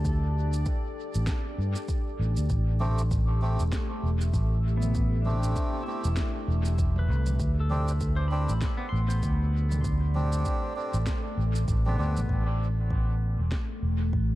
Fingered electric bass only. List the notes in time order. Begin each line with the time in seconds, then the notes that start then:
Already playing: D2
1.16 A1
1.58 G2
2.20 A1
2.38 D2
2.50 A1
3.60 E1
4.03 E1
4.34 A1
6.05 E1
6.48 E1
7.10 C2
7.40 D2
8.49 A1
8.93 A1
9.23 D2
10.94 A1
11.38 A1
11.68 A1
11.99 D2
12.17 A1
12.29 A1
13.39 E1
13.83 E1
14.13 A1